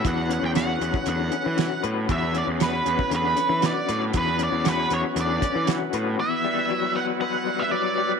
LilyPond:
<<
  \new Staff \with { instrumentName = "Lead electric guitar" } { \time 4/4 \key e \dorian \tempo 4 = 117 fis''8 fis''16 g''16 fis''4 fis''4. r8 | e''8 d''8 b'4 b'4 d''8. r16 | b'8 d''8 b'8 cis''8 d''4 r4 | e''4. fis''8 fis''8. e''16 d''8. r16 | }
  \new Staff \with { instrumentName = "Transistor combo organ" } { \time 4/4 \key e \dorian <fis b b'>1~ | <fis b b'>1~ | <fis b b'>1 | <b e' fis' b'>1 | }
  \new Staff \with { instrumentName = "Clean electric guitar" } { \time 4/4 \key e \dorian <d e cis' fis' b'>8 cis'8 fis'8 cis'8 d8 cis'8 fis'8 b'8 | e8 cis'8 fis'8 cis'8 d8 cis'8 fis'8 b'8 | e8 cis'8 fis'8 cis'8 d8 cis'8 fis'8 b'8 | e,8 g8 fis8 b8 b'8 g8 fis8 g8 | }
  \new Staff \with { instrumentName = "Picked electric bass" } { \clef bass \time 4/4 \key e \dorian e,8. e,8. e,16 r16 e,8 r16 e8 r16 a,8 | e,8. e,8. e,16 r16 e,8 r16 e8 r16 a,8 | e,8. e,8. e,16 r16 e,8 r16 e8 r16 a,8 | r1 | }
  \new DrumStaff \with { instrumentName = "Drums" } \drummode { \time 4/4 <hh bd>8 hh8 <hh sn>8 hh16 bd16 hh8 hh8 <hh sn>8 hh8 | <hh bd>8 hh8 <hh sn>8 hh16 bd16 hh8 hh8 <hh sn>8 hh8 | <hh bd>8 hh8 <hh sn>8 hh8 hh8 <hh bd>8 <hh sn>8 hh8 | r4 r4 r4 r4 | }
>>